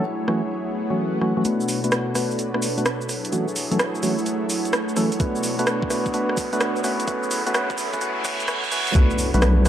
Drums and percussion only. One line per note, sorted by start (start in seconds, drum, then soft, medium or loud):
0.28 cross-stick soft
1.21 cross-stick soft
1.45 closed hi-hat medium
1.45 shaker soft
1.61 shaker soft
1.68 open hi-hat loud
1.68 shaker medium
1.84 closed hi-hat medium
1.84 shaker soft
1.92 cross-stick loud
1.92 closed hi-hat medium
1.92 shaker soft
2.15 cross-stick soft
2.15 open hi-hat medium
2.15 shaker medium
2.31 shaker soft
2.39 closed hi-hat medium
2.39 shaker soft
2.54 cross-stick medium
2.62 open hi-hat loud
2.62 shaker medium
2.78 closed hi-hat soft
2.78 shaker soft
2.86 cross-stick loud
2.86 closed hi-hat medium
2.86 shaker soft
3.01 shaker soft
3.09 cross-stick soft
3.09 open hi-hat medium
3.09 shaker medium
3.25 closed hi-hat medium
3.25 shaker soft
3.32 closed hi-hat medium
3.32 shaker soft
3.48 shaker soft
3.56 open hi-hat loud
3.56 shaker medium
3.72 closed hi-hat medium
3.72 shaker soft
3.79 cross-stick loud
3.79 closed hi-hat medium
3.79 shaker soft
3.95 shaker soft
4.03 open hi-hat medium
4.03 shaker medium
4.18 shaker soft
4.26 closed hi-hat medium
4.26 shaker soft
4.50 open hi-hat loud
4.50 shaker medium
4.65 closed hi-hat soft
4.65 shaker soft
4.73 cross-stick loud
4.73 closed hi-hat medium
4.73 shaker soft
4.89 shaker soft
4.97 cross-stick soft
4.97 open hi-hat medium
4.97 shaker medium
5.12 closed hi-hat medium
5.12 shaker soft
5.20 kick loud
5.20 closed hi-hat medium
5.20 shaker soft
5.36 shaker soft
5.43 open hi-hat loud
5.43 shaker medium
5.59 closed hi-hat medium
5.59 shaker soft
5.67 cross-stick loud
5.67 closed hi-hat medium
5.67 shaker soft
5.82 kick loud
5.90 cross-stick medium
5.90 open hi-hat medium
5.90 shaker medium
6.06 kick medium
6.06 shaker soft
6.14 closed hi-hat medium
6.14 shaker soft
6.29 cross-stick medium
6.37 kick loud
6.37 open hi-hat loud
6.37 shaker medium
6.53 closed hi-hat soft
6.53 shaker soft
6.61 cross-stick loud
6.61 closed hi-hat medium
6.61 shaker soft
6.76 shaker soft
6.84 cross-stick soft
6.84 open hi-hat medium
6.84 shaker medium
7.00 closed hi-hat medium
7.00 shaker soft
7.08 kick loud
7.08 closed hi-hat medium
7.08 shaker soft
7.23 shaker soft
7.31 open hi-hat loud
7.31 shaker medium
7.47 closed hi-hat medium
7.47 shaker soft
7.54 cross-stick loud
7.54 closed hi-hat medium
7.54 shaker soft
7.70 kick loud
7.70 shaker soft
7.78 open hi-hat medium
7.78 shaker medium
7.93 kick medium
7.93 shaker soft
8.01 closed hi-hat medium
8.01 shaker soft
8.25 kick loud
8.25 open hi-hat loud
8.25 shaker medium
8.40 closed hi-hat soft
8.40 shaker soft
8.48 cross-stick loud
8.48 closed hi-hat medium
8.48 shaker soft
8.64 kick medium
8.64 shaker soft
8.72 cross-stick soft
8.72 open hi-hat medium
8.72 shaker medium
8.87 closed hi-hat medium
8.87 shaker soft
8.95 kick loud
8.95 closed hi-hat medium
8.95 shaker soft
9.11 shaker soft
9.19 open hi-hat loud
9.19 shaker medium
9.34 closed hi-hat medium
9.34 shaker soft
9.42 cross-stick loud
9.42 closed hi-hat medium
9.42 shaker soft
9.65 cross-stick medium
9.65 open hi-hat loud
9.65 shaker medium